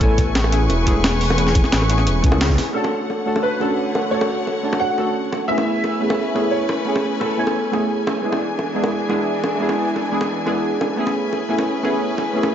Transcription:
0.00 detuned saw bass A1, synth stab A3 B3 C#4 E4 G#5, grand piano A4, string section B4 G#5 C#6, kick, closed hi-hat
0.18 kick, closed hi-hat
0.35 snare, closed hi-hat
0.44 high bongo
0.51 synth stab A3 B3 C#4 E4 G#4, closed hi-hat
0.70 detuned saw bass E1, closed hi-hat, high bongo
0.86 detuned saw bass E1, synth stab A3 B3 C#4 E4 G#4, kick, closed hi-hat
1.04 snare, closed hi-hat
1.21 open hi-hat
1.30 high bongo
1.36 synth stab A3 B3 C#4 E4, closed hi-hat
1.40 synth stab G#4
1.47 snare
1.55 kick, closed hi-hat
1.64 snare
1.72 detuned saw bass A1, snare, closed hi-hat
1.82 high bongo
1.89 synth stab A3 B3 C#4 E4 G#4, closed hi-hat
1.98 snare
2.07 detuned saw bass E1, closed hi-hat
2.22 detuned saw bass C#2, synth stab A3 B3 C#4 E4, kick, closed hi-hat
2.26 synth stab G#4
2.32 high bongo
2.41 snare, closed hi-hat
2.49 kick, snare
2.58 snare, open hi-hat
2.73 string section D3 C#5 F#5, synth stab A3 C#4 D4 F#4, grand piano A4
2.77 synth stab A4
2.84 high bongo
3.10 high bongo
3.25 synth stab A3 C#4 D4 F#4 A4
3.36 high bongo
3.43 grand piano B4
3.60 synth stab A3 C#4 D4 F#4 A4, high bongo
3.95 high bongo
4.10 synth stab A3 C#4 D4 F#4, grand piano C#5
4.14 synth stab A4
4.21 high bongo
4.47 high bongo
4.63 synth stab A3 C#4 D4 F#4 A4
4.73 high bongo
4.80 grand piano F#5
4.97 synth stab A3 C#4 D4 F#4 A4, high bongo
5.33 high bongo
5.48 synth stab A3 B3 C#4 E4, string section A3 C#4 B4 G#5, grand piano E5
5.52 synth stab G#4
5.58 high bongo
5.84 high bongo
6.00 synth stab A3 B3 C#4 E4 G#4
6.10 high bongo
6.34 synth stab A3 B3 C#4 E4 G#4, high bongo
6.51 grand piano C#5
6.69 high bongo
6.85 synth stab A3 B3 C#4 E4
6.89 synth stab G#4
6.96 high bongo
7.20 grand piano A4, high bongo
7.37 synth stab A3 B3 C#4 E4 G#5
7.47 high bongo
7.71 synth stab A3 B3 C#4 E4 G#4, high bongo
8.07 high bongo
8.22 string section E3 D4, synth stab G#3 B3 D4 E4
8.26 synth stab G#4
8.32 high bongo
8.59 high bongo
8.74 synth stab G#3 B3 D4 E4 G#4
8.84 high bongo
9.09 synth stab G#3 B3 D4 E4 G#4, high bongo
9.44 high bongo
9.58 synth stab G#3 B3 D4 E4
9.63 synth stab G#4
9.69 high bongo
9.96 high bongo
10.11 synth stab G#3 B3 D4 E4 G#4
10.21 high bongo
10.46 synth stab G#3 B3 D4 E4 G#4, high bongo
10.81 high bongo
10.96 synth stab A3 B3 C#4 E4, string section A3 C#4 B4
11.00 synth stab G#4
11.07 high bongo
11.33 high bongo
11.48 synth stab A3 B3 C#4 E4 G#4
11.58 high bongo
11.83 synth stab A3 B3 C#4 E4 G#4, high bongo
12.18 high bongo
12.33 synth stab A3 B3 C#4 E4
12.37 synth stab G#4
12.43 high bongo

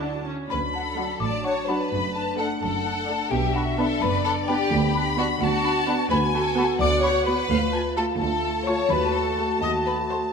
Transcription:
Already playing: double bass section D2, cello section D3, french horn section F#3 D4, violin section F#4 A5
0.02 viola section D4
0.26 viola section C#4
0.50 cello section D2, double bass section D2, french horn section F#3 D4, violin section B4 B5, xylophone B5
0.74 clarinet D4, violin section A4, flute F#5, xylophone A5
0.97 viola section F#3 D4, clarinet D4, flute F#5
1.20 double bass section A1, cello section A2, violin section D5 A5, xylophone D6
1.44 clarinet D4, violin section C#5, flute F#5, xylophone C#6
1.68 viola section F#3 D4, clarinet D4, violin section B4, flute F#5, xylophone B5
1.92 double bass section F#1, cello section F#2, french horn section A3, violin section B5
2.16 clarinet D4, flute A5, violin section A5
2.38 viola section A3 D4, clarinet D4, violin section A4 F#5, xylophone A5, flute A5
2.61 double bass section F#1, cello section F#2, violin section A4 F#5, xylophone A5
2.86 clarinet D4, flute A5
3.08 viola section A3 D4, clarinet D4, flute A5
3.31 double bass section B1, cello section B2, french horn section B3 D4, violin section G4 E5, xylophone G5
3.55 clarinet D4, violin section F#4, xylophone F#5, flute B5
3.78 viola section B3 D4, clarinet D4, violin section A4, xylophone A5, flute B5
4.02 double bass section F#1, cello section F#2, violin section B4 D5, xylophone B5
4.24 clarinet D4, violin section A4, xylophone A5, flute B5
4.47 viola section B3 D4, clarinet D4, violin section G4, xylophone G5, flute B5
4.71 cello section D2, double bass section D2, violin section B5
4.95 clarinet D4, flute B5
5.17 viola section B3 D4, clarinet D4, violin section F#4, xylophone F#5, flute B5
5.40 cello section D2, double bass section D2, violin section F#4 A5, xylophone F#5
5.64 clarinet D4, flute B5
5.87 viola section B3 D4, clarinet D4, flute B5
6.09 cello section D2, double bass section D2, french horn section B3 F#4, violin section B4 G#5, xylophone B5
6.34 clarinet F#4, violin section A4, xylophone A5, flute B5
6.56 viola section B3 F#4, clarinet F#4, flute B5
6.79 cello section D2, double bass section D2, violin section D5 F#5, xylophone D6
7.02 clarinet F#4, violin section C#5, flute B5, xylophone C#6
7.26 viola section B3 F#4, clarinet F#4, violin section B4, flute B5, xylophone B5
7.49 double bass section D2, cello section D2, french horn section A3 F4, violin section F5
7.72 clarinet F4, violin section G#5, flute A5
7.96 viola section A3 F4, clarinet F4, violin section A4 A5, flute A5, xylophone A5
8.19 cello section D2, double bass section D2, violin section A4, xylophone A5
8.44 clarinet F4, flute A5
8.67 viola section A3 F4, clarinet F4, violin section C#5, flute A5, xylophone C#6
8.90 double bass section D#2, cello section D#2, clarinet F#4, french horn section F#4, violin section B4, flute A5, xylophone B5
9.14 violin section A4, xylophone A5
9.39 viola section A3 F#4
9.61 cello section D#2, double bass section D#2, clarinet F#4, violin section D#5, flute A5, xylophone D#6
9.86 violin section B4, xylophone B5
10.09 viola section A3 F#4, violin section C5, xylophone C6

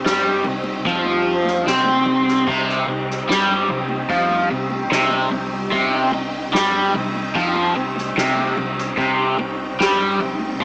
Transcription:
Already playing: string machine G3 C4 D#4 G4
0.05 fingered electric bass G2, overdriven electric guitar G3, snare, ride
0.44 fingered electric bass C2, overdriven electric guitar C3, ride, low conga
0.64 high conga
0.85 fingered electric bass F2, overdriven electric guitar F3, kick, ride
1.04 high conga
1.26 ride
1.45 snare, high conga
1.65 fingered electric bass C3, overdriven electric guitar C4, snare, ride, low conga
1.85 high conga
2.06 ride, low conga
2.28 snare
2.48 fingered electric bass C2, overdriven electric guitar C3, kick, crash
2.69 snare
2.88 fingered electric bass C2, overdriven electric guitar C3, ride
3.10 snare
3.29 fingered electric bass G2, overdriven electric guitar G3, snare, ride
3.69 fingered electric bass C2, overdriven electric guitar C3, ride, low conga
3.89 high conga
4.10 fingered electric bass F2, overdriven electric guitar F3, kick, ride
4.30 high conga
4.50 fingered electric bass C2, overdriven electric guitar C3, ride
4.70 high conga
4.91 fingered electric bass C2, overdriven electric guitar C3, snare, ride
5.11 high conga
5.30 fingered electric bass C2, overdriven electric guitar C3, ride, low conga
5.71 fingered electric bass C2, overdriven electric guitar C3, kick, ride
6.12 fingered electric bass C2, overdriven electric guitar C3, ride, high conga
6.53 fingered electric bass G2, overdriven electric guitar G3, snare, ride
6.94 fingered electric bass C2, overdriven electric guitar C3, ride, low conga
7.16 high conga
7.35 fingered electric bass F2, overdriven electric guitar F3, kick, ride
7.56 high conga
7.76 fingered electric bass C2, overdriven electric guitar C3, ride
7.96 snare, high conga
8.17 fingered electric bass C2, overdriven electric guitar C3, snare, ride
8.37 high conga
8.57 fingered electric bass C2, overdriven electric guitar C3, ride, low conga
8.78 snare
8.97 fingered electric bass C2, overdriven electric guitar C3, kick, crash
9.39 fingered electric bass C2, overdriven electric guitar C3, ride, high conga
9.80 fingered electric bass G2, overdriven electric guitar G3, snare, ride
10.20 fingered electric bass C2, overdriven electric guitar C3, ride, low conga
10.39 high conga
10.60 fingered electric bass F2, kick, ride

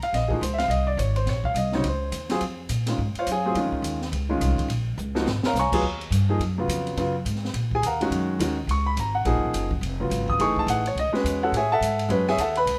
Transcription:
0.01 grand piano F5, muted upright bass stroke, ride
0.13 upright bass A#1, grand piano D#5, snare, ride
0.28 grand piano F3 A#3 D#4 F#4 G#4, kick
0.41 upright bass C#2, grand piano C5, hi-hat pedal, ride
0.54 grand piano E5
0.58 grand piano F5, snare, ride
0.68 upright bass C2, grand piano D#5, ride
0.87 grand piano D5
0.97 upright bass G#1, grand piano C#5, hi-hat pedal, ride
1.16 grand piano C5, ride
1.26 upright bass A#1, grand piano C#5, snare, ride
1.44 grand piano F5, kick
1.54 upright bass C2, grand piano D#5, hi-hat pedal, ride
1.72 grand piano C#3 F#3 C4 D#4 C#5, snare
1.84 upright bass C#2, ride
1.88 grand piano C5
2.12 upright bass D#2, hi-hat pedal, ride
2.29 grand piano F#3 C4 F4 G#4, snare, ride
2.41 upright bass F2, ride
2.69 upright bass A#2, hi-hat pedal, ride
2.86 grand piano D#3 G#3 C#4 F4, snare, ride
2.98 upright bass G#2
3.15 grand piano F4 C5 F5, muted upright bass stroke, ride
3.19 grand piano C#5
3.27 upright bass F#2, hi-hat pedal, ride
3.31 grand piano G#4 C#5 F5 G#5
3.45 grand piano F#3 C4 F4 G#4
3.55 upright bass F2, grand piano D#3 G#3 C#4 F4, ride
3.72 muted upright bass stroke, kick
3.82 upright bass D#2, hi-hat pedal, ride
4.02 snare
4.12 upright bass C#2, ride
4.29 grand piano D#3 G#3 C#4 F4
4.41 upright bass C2, hi-hat pedal, ride
4.58 kick, ride
4.68 upright bass A#1, ride
4.98 upright bass C#2, hi-hat pedal
5.15 grand piano F3 A#3 D#4 F#4, snare
5.26 upright bass G#1, snare
5.43 grand piano A#4 C#5 F5 A#5, muted upright bass stroke, snare
5.53 upright bass C2, snare, hi-hat pedal
5.59 grand piano C#5 G#5 A#5 C#6
5.72 grand piano F#3 B3 F4 G#4, muted upright bass stroke, kick, crash
5.82 upright bass D#2
6.01 ride
6.11 upright bass G2, hi-hat pedal, ride
6.29 grand piano F3 A#3 D#4 G#4
6.39 upright bass F#2, ride
6.58 grand piano C#3 F#3 B3 F4
6.68 upright bass F2, hi-hat pedal, ride
6.87 ride
6.97 upright bass F#2, grand piano C#3 F#3 B3 F4, ride
7.25 upright bass G#2, hi-hat pedal, ride
7.36 snare
7.45 snare
7.54 upright bass A#2, ride
7.71 grand piano G#4 G#5, kick
7.82 upright bass D#2, hi-hat pedal, ride
7.86 grand piano A#4 F5 F#5 A#5
8.01 grand piano D#3 G#3 C#4 F#4, ride
8.10 upright bass F#2, ride
8.39 upright bass D#2, grand piano D#3 G#3 C#4 F#4, hi-hat pedal, ride
8.67 upright bass C#2, grand piano C#6, ride
8.86 grand piano B5
8.97 upright bass G#1, grand piano A#5, hi-hat pedal, ride
9.15 grand piano F#5
9.25 upright bass A#1, grand piano F3 A#3 D#4 G#4, ride
9.35 upright bass F#1
9.44 upright bass D#1
9.53 upright bass F#1, hi-hat pedal, ride
9.71 kick
9.81 upright bass F1, ride
10.00 grand piano C#3 F#3 B3 F4
10.10 upright bass G#1, hi-hat pedal, ride
10.28 grand piano D#6, kick
10.39 upright bass F#1, grand piano E3 A3 D#4 G#4 C#6, ride
10.56 grand piano A5, kick
10.67 upright bass A1, grand piano F#5, hi-hat pedal, ride
10.86 grand piano C#5, ride
10.95 upright bass C#2, ride
10.99 grand piano D#5
11.13 grand piano G#3 C#4 F#4 B4, snare
11.24 upright bass E2, hi-hat pedal, ride
11.43 grand piano F#4 A4 C#5 F#5
11.52 upright bass A2, ride
11.57 grand piano G#4 C#5 E5 G#5
11.72 grand piano A4 E5 F#5 A5
11.81 upright bass G#2, hi-hat pedal, ride
11.99 ride
12.09 upright bass F#2, grand piano G#3 C#4 F#4 B4, ride
12.28 grand piano G#4 C#5 E5 G#5, snare
12.37 upright bass D#2, grand piano A4 E5 F#5 A5, hi-hat pedal, ride
12.55 grand piano B4 B5, ride
12.66 upright bass C#2, ride

